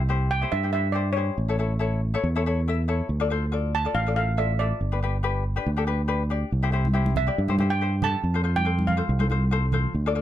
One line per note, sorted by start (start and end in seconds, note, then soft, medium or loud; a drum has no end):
0.00 0.43 C2 medium
0.09 0.29 E4 medium
0.09 0.29 G4 medium
0.09 0.29 C5 medium
0.31 0.53 G5 medium
0.41 0.55 E4 medium
0.41 0.55 G4 medium
0.41 0.55 C5 medium
0.52 1.29 G2 medium
0.52 0.71 E5 medium
0.63 0.70 E4 medium
0.63 0.70 G4 medium
0.63 0.70 C5 medium
0.73 0.87 E4 medium
0.73 0.87 G4 medium
0.73 0.87 C5 medium
0.73 0.96 E5 medium
0.92 1.08 E4 medium
0.92 1.08 G4 medium
0.92 1.09 C5 medium
0.92 1.16 D5 medium
1.13 1.36 E4 soft
1.13 1.36 G4 medium
1.13 1.96 C#5 medium
1.17 1.37 C5 medium
1.38 2.15 A1 medium
1.48 1.55 E4 medium
1.48 1.55 A4 medium
1.48 1.56 C#5 medium
1.59 1.72 E4 medium
1.59 1.73 A4 soft
1.59 1.73 C#5 medium
1.79 2.00 E4 medium
1.79 2.00 A4 medium
1.79 2.00 C#5 medium
2.14 2.26 E4 medium
2.14 2.26 A4 medium
2.14 2.27 C#5 medium
2.23 3.00 E2 medium
2.36 2.42 E4 medium
2.36 2.42 A4 medium
2.36 2.42 C#5 medium
2.46 2.59 E4 medium
2.46 2.59 A4 medium
2.46 2.59 C#5 medium
2.68 2.80 E4 medium
2.68 2.81 A4 medium
2.68 2.81 E5 medium
2.88 3.08 E4 medium
2.88 3.08 A4 medium
2.88 3.08 C#5 medium
3.09 3.86 D2 medium
3.20 3.27 F4 medium
3.20 3.27 A4 medium
3.20 3.27 D5 medium
3.30 3.44 F4 medium
3.30 3.44 A4 medium
3.30 3.45 C5 medium
3.52 3.72 F4 medium
3.52 3.72 A4 medium
3.52 3.72 D5 medium
3.75 3.96 A5 medium
3.85 3.97 F4 medium
3.85 3.98 A4 medium
3.85 3.98 D5 medium
3.94 4.71 A1 medium
3.94 4.15 F5 medium
4.07 4.13 F4 medium
4.07 4.13 A4 medium
4.07 4.13 D5 medium
4.16 4.30 F4 medium
4.16 4.30 A4 medium
4.16 4.30 E5 medium
4.16 4.39 F5 medium
4.37 4.51 F4 medium
4.37 4.51 A4 medium
4.37 4.51 D5 medium
4.37 4.60 E5 medium
4.59 4.79 F4 medium
4.59 4.79 A4 soft
4.59 5.41 D5 medium
4.59 4.79 E5 medium
4.81 5.57 G1 medium
4.92 4.98 D4 medium
4.92 4.99 G4 medium
4.92 4.98 B4 medium
5.02 5.16 D4 medium
5.02 5.16 G4 medium
5.02 5.16 B4 medium
5.23 5.43 D4 medium
5.23 5.43 G4 medium
5.23 5.43 B4 medium
5.56 5.69 D4 medium
5.56 5.69 G4 medium
5.56 5.69 B4 medium
5.66 6.43 D2 medium
5.77 5.83 D4 medium
5.77 5.84 G4 medium
5.77 5.84 A4 medium
5.87 6.00 D4 medium
5.87 6.01 G4 medium
5.87 6.01 B4 medium
6.08 6.22 D4 medium
6.08 6.22 G4 medium
6.08 6.22 B4 medium
6.30 6.50 D4 medium
6.30 6.50 G4 medium
6.30 6.50 D5 medium
6.52 7.29 C2 medium
6.62 6.69 E4 medium
6.62 6.69 G4 medium
6.62 6.70 C5 medium
6.72 6.86 E4 medium
6.72 6.87 G4 medium
6.72 6.87 C5 medium
6.85 high conga medium
6.93 7.13 E4 medium
6.93 7.14 G4 medium
6.93 7.14 C5 medium
7.06 high conga medium
7.16 7.72 E5 medium
7.16 low conga medium
7.27 7.40 E4 medium
7.27 7.40 G4 medium
7.27 7.40 D5 medium
7.38 8.14 G2 medium
7.48 7.55 E4 medium
7.48 7.55 G4 medium
7.48 7.55 C5 medium
7.48 high conga medium
7.59 7.72 E4 medium
7.59 7.72 G4 medium
7.59 7.73 C5 medium
7.59 high conga medium
7.70 8.00 G5 medium
7.81 7.94 E4 soft
7.81 7.94 G4 medium
7.81 7.94 C5 medium
8.02 8.21 E4 medium
8.02 8.21 G4 medium
8.02 8.22 A4 medium
8.02 8.53 A5 medium
8.02 low conga medium
8.23 9.00 F2 medium
8.34 8.40 F4 medium
8.34 8.40 A4 soft
8.34 8.41 C5 medium
8.44 8.57 F4 medium
8.44 8.57 A4 soft
8.44 8.58 C5 medium
8.56 8.89 G5 medium
8.56 high conga medium
8.65 8.85 F4 medium
8.65 8.85 A4 medium
8.65 8.85 C5 medium
8.79 high conga medium
8.87 9.69 F5 medium
8.87 low conga medium
8.97 9.10 F4 medium
8.97 9.10 A4 medium
8.97 9.11 C5 medium
9.09 9.85 C2 medium
9.19 9.26 F4 medium
9.19 9.26 A4 medium
9.19 9.26 C5 medium
9.19 high conga medium
9.30 9.44 F4 medium
9.30 9.44 A4 medium
9.30 9.44 C5 medium
9.30 high conga medium
9.51 9.64 F4 medium
9.51 9.65 A4 medium
9.51 9.65 C5 medium
9.72 9.92 F4 medium
9.72 9.92 A4 medium
9.72 9.93 C5 medium
9.72 low conga medium
9.94 10.22 D2 medium
10.06 10.12 F4 medium
10.06 10.12 A4 medium
10.06 10.12 D5 medium
10.15 10.22 F4 medium
10.15 10.22 A4 medium
10.15 10.22 D5 medium